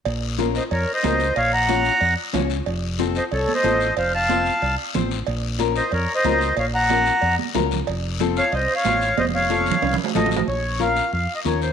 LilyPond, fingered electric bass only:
\new Staff \with { instrumentName = "Fingered electric bass" } { \clef bass \time 4/4 \key bes \minor \tempo 4 = 184 bes,,2 f,8 r8 des,4 | bes,,2 f,8 r8 des,4 | f,,2 c,8 r8 a,,4 | f,,2 c,8 r8 a,,4 |
bes,,2 f,8 r8 des,4 | bes,,2 f,8 r8 des,4 | f,,2 c,8 r8 a,,4 | f,,2 c,8 r8 a,,4 |
bes,,2 f,8 r8 ees,4 | }